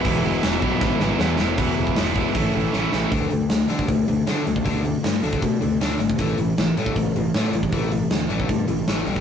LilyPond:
<<
  \new Staff \with { instrumentName = "Distorted electric guitar" } { \time 4/4 \key e \mixolydian \tempo 4 = 156 <e gis b e'>8 <e gis b e'>8 <e gis b e'>8 <e gis b e'>8 <e gis b e'>8 <e gis b e'>8 <e gis b e'>8 <e gis b e'>8 | <e gis b e'>4 <e gis b e'>8 <e gis b e'>8 <a, e a cis' e'>4 <a, e a cis' e'>8 <a, e a cis' e'>8 | \key d \major r1 | r1 |
r1 | r1 | }
  \new Staff \with { instrumentName = "Distorted electric guitar" } { \clef bass \time 4/4 \key e \mixolydian <e, b, e>8 <e, b, e>8 <e, b, e>8 <e, b, e>8 <e, b, e>8 <e, b, e>8 <e, b, e>8 <e, b, e>8 | <e, b, e>4 <e, b, e>8 <e, b, e>8 <a, e a>4 <a, e a>8 <a, e a>8 | \key d \major <d a d'>8 <d a>8 <d a>8 <d a d'>8 <d a>8 <d a>8 <d a d'>8 <d a>8 | <d a d'>8 <d a>8 <d a>8 <d a d'>8 <d a>8 <d a>8 <d a d'>8 <d a>8 |
<a, e a>8 <a, e>8 <a, e>8 <a, e a>8 <a, e>8 <a, e>8 <a, e a>8 <a, e>8 | <a, e a>8 <a, e>8 <a, e>8 <a, e a>8 <a, e>8 <a, e>8 <a, e a>8 <g, d g>8 | }
  \new Staff \with { instrumentName = "Picked electric bass" } { \clef bass \time 4/4 \key e \mixolydian e,,4 e,,8 b,,8 gis,,4 e,8 e,,8 | e,,8 e,,8 e,,4 a,,8 a,,8 a,,8 a,,8 | \key d \major d,8 d,8 d,8 d8 d,8 d,8 d8 d,8 | d,4 g,8 d,8 b,8 d,8 d,8 gis,,8 |
a,,8 a,,8 a,,8 a,8 a,,8 a,,8 a,8 a,,8 | a,,4 d,8 a,,8 g,8 a,,8 a,,8 b,,8 | }
  \new DrumStaff \with { instrumentName = "Drums" } \drummode { \time 4/4 <hho bd>4 <hho sn>8 bd8 <bd sn>8 sn8 sn8 sn8 | <hho bd>8. bd16 <hho sn>8 bd8 <hho bd>4 sn8 sn8 | <hho bd>8 hho8 <hho sn>8 hho16 bd16 <hho bd>8 hho8 <hho sn>8 hho16 bd16 | <hho bd>8 hho8 <hho sn>8 hho16 bd16 <hho bd>8 hho8 <hho sn>8 hho16 bd16 |
<hho bd>8 hho8 <hho sn>8 hho16 bd16 <hho bd>8 hho8 <hho sn>8 hho16 bd16 | <hho bd>8 hho8 <hho sn>8 hho16 bd16 <hho bd>8 hho8 <hho sn>8 hho16 bd16 | }
>>